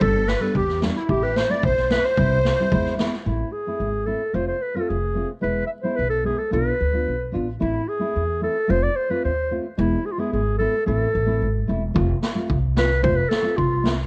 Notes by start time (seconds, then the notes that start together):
0.00 G1 G3 B3 D4 A4, kick
0.28 B4, snare
0.40 G3 B3 D4 A4
0.55 E2 G4, kick
0.69 snare
0.81 G3 B3 D4, snare
0.95 E4
1.09 A1 A3 C4 E4 G4, kick
1.24 B4
1.36 C5, snare
1.49 A3 C4 E4 D5
1.63 B1 C5, kick
1.77 snare
1.90 A3 C4 E4 B4, snare
2.02 C5
2.17 C2 G3 C4 E4, kick
2.45 snare
2.59 G3 C4 E4
2.72 E2 G#3 B3 E4, kick
2.85 snare
2.99 G#3 B3 E4, snare
3.13 snare
3.26 A1 A3 C4 E4
3.52 G#4
3.67 A3 C4 E4
3.80 G#1
4.06 A3 C4 E4 A4
4.33 F1 A3 C4 F4 C5
4.48 C5
4.62 B4
4.74 A3 C4 F4 A4
4.88 F1 G#4
5.15 A3 C4 F4
5.41 E1 G#3 B3 E4 B4
5.67 E5
5.82 G#3 B3 E4 C5
5.96 B1 B4
6.10 A4
6.24 G#3 B3 E4 G#4
6.39 A4
6.51 B1 B3 D4 F4 B4
6.80 D2
6.92 B3 D4 F4
7.08 B1
7.32 A1 B3 D4 F4
7.60 A1 A3 C4 E4
7.89 G#4
7.99 A3 C4 E4
8.16 E2
8.41 A3 C4 E4 A4
8.68 F1 A3 C4 F4 C5
8.83 D5
8.96 C5
9.10 A3 C4 F4 B4
9.25 D#2 C5
9.51 A3 C4 F4
9.78 E1 G#3 B3 E4
10.06 G#4
10.12 F4
10.18 G#3 B3 E4 G#4
10.33 G#1 G#4
10.58 G#3 B3 E4 A4
10.86 A1 A3 C4 E4 A4
11.15 A1
11.26 A3 C4 E4
11.42 G#1
11.68 E1 A3 C4 E4
11.94 F1 A3 C4 F4, kick
12.23 snare
12.35 A3 C4 F4
12.50 C2, kick
12.76 A3 C4 F4 B4, snare
13.03 F1 A3 C4 F4 C5, kick
13.16 B4
13.29 A4, snare
13.42 A3 C4 F4
13.57 C2 F4, kick
13.83 A3 C4 E4, snare